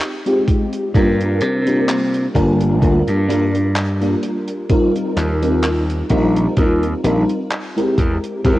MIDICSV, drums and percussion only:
0, 0, Header, 1, 2, 480
1, 0, Start_track
1, 0, Key_signature, -3, "major"
1, 0, Tempo, 937500
1, 485, Time_signature, 4, 2, 24, 8
1, 4399, End_track
2, 0, Start_track
2, 0, Title_t, "Drums"
2, 2, Note_on_c, 9, 39, 122
2, 8, Note_on_c, 9, 42, 79
2, 53, Note_off_c, 9, 39, 0
2, 59, Note_off_c, 9, 42, 0
2, 134, Note_on_c, 9, 42, 54
2, 185, Note_off_c, 9, 42, 0
2, 244, Note_on_c, 9, 36, 105
2, 246, Note_on_c, 9, 42, 88
2, 295, Note_off_c, 9, 36, 0
2, 297, Note_off_c, 9, 42, 0
2, 372, Note_on_c, 9, 42, 51
2, 423, Note_off_c, 9, 42, 0
2, 484, Note_on_c, 9, 36, 109
2, 487, Note_on_c, 9, 42, 75
2, 535, Note_off_c, 9, 36, 0
2, 538, Note_off_c, 9, 42, 0
2, 617, Note_on_c, 9, 42, 50
2, 669, Note_off_c, 9, 42, 0
2, 720, Note_on_c, 9, 42, 85
2, 771, Note_off_c, 9, 42, 0
2, 853, Note_on_c, 9, 42, 56
2, 904, Note_off_c, 9, 42, 0
2, 967, Note_on_c, 9, 39, 122
2, 970, Note_on_c, 9, 42, 75
2, 1019, Note_off_c, 9, 39, 0
2, 1021, Note_off_c, 9, 42, 0
2, 1096, Note_on_c, 9, 42, 50
2, 1148, Note_off_c, 9, 42, 0
2, 1204, Note_on_c, 9, 36, 60
2, 1208, Note_on_c, 9, 42, 81
2, 1255, Note_off_c, 9, 36, 0
2, 1259, Note_off_c, 9, 42, 0
2, 1334, Note_on_c, 9, 42, 53
2, 1386, Note_off_c, 9, 42, 0
2, 1444, Note_on_c, 9, 36, 115
2, 1446, Note_on_c, 9, 42, 64
2, 1495, Note_off_c, 9, 36, 0
2, 1497, Note_off_c, 9, 42, 0
2, 1575, Note_on_c, 9, 42, 47
2, 1626, Note_off_c, 9, 42, 0
2, 1690, Note_on_c, 9, 42, 90
2, 1741, Note_off_c, 9, 42, 0
2, 1817, Note_on_c, 9, 42, 46
2, 1868, Note_off_c, 9, 42, 0
2, 1924, Note_on_c, 9, 42, 72
2, 1925, Note_on_c, 9, 39, 120
2, 1975, Note_off_c, 9, 42, 0
2, 1976, Note_off_c, 9, 39, 0
2, 2055, Note_on_c, 9, 42, 50
2, 2107, Note_off_c, 9, 42, 0
2, 2165, Note_on_c, 9, 42, 81
2, 2216, Note_off_c, 9, 42, 0
2, 2292, Note_on_c, 9, 42, 54
2, 2343, Note_off_c, 9, 42, 0
2, 2403, Note_on_c, 9, 42, 68
2, 2404, Note_on_c, 9, 36, 107
2, 2454, Note_off_c, 9, 42, 0
2, 2455, Note_off_c, 9, 36, 0
2, 2537, Note_on_c, 9, 42, 51
2, 2588, Note_off_c, 9, 42, 0
2, 2645, Note_on_c, 9, 42, 91
2, 2650, Note_on_c, 9, 39, 51
2, 2696, Note_off_c, 9, 42, 0
2, 2701, Note_off_c, 9, 39, 0
2, 2777, Note_on_c, 9, 42, 48
2, 2829, Note_off_c, 9, 42, 0
2, 2885, Note_on_c, 9, 39, 111
2, 2888, Note_on_c, 9, 42, 74
2, 2936, Note_off_c, 9, 39, 0
2, 2939, Note_off_c, 9, 42, 0
2, 3020, Note_on_c, 9, 42, 49
2, 3071, Note_off_c, 9, 42, 0
2, 3121, Note_on_c, 9, 42, 90
2, 3124, Note_on_c, 9, 36, 58
2, 3172, Note_off_c, 9, 42, 0
2, 3175, Note_off_c, 9, 36, 0
2, 3258, Note_on_c, 9, 42, 60
2, 3309, Note_off_c, 9, 42, 0
2, 3363, Note_on_c, 9, 42, 74
2, 3364, Note_on_c, 9, 36, 111
2, 3414, Note_off_c, 9, 42, 0
2, 3415, Note_off_c, 9, 36, 0
2, 3497, Note_on_c, 9, 42, 46
2, 3548, Note_off_c, 9, 42, 0
2, 3606, Note_on_c, 9, 42, 94
2, 3658, Note_off_c, 9, 42, 0
2, 3734, Note_on_c, 9, 42, 48
2, 3785, Note_off_c, 9, 42, 0
2, 3842, Note_on_c, 9, 42, 79
2, 3847, Note_on_c, 9, 39, 113
2, 3893, Note_off_c, 9, 42, 0
2, 3898, Note_off_c, 9, 39, 0
2, 3982, Note_on_c, 9, 42, 47
2, 4033, Note_off_c, 9, 42, 0
2, 4084, Note_on_c, 9, 36, 100
2, 4085, Note_on_c, 9, 42, 85
2, 4136, Note_off_c, 9, 36, 0
2, 4136, Note_off_c, 9, 42, 0
2, 4217, Note_on_c, 9, 42, 49
2, 4269, Note_off_c, 9, 42, 0
2, 4325, Note_on_c, 9, 36, 105
2, 4326, Note_on_c, 9, 42, 75
2, 4376, Note_off_c, 9, 36, 0
2, 4377, Note_off_c, 9, 42, 0
2, 4399, End_track
0, 0, End_of_file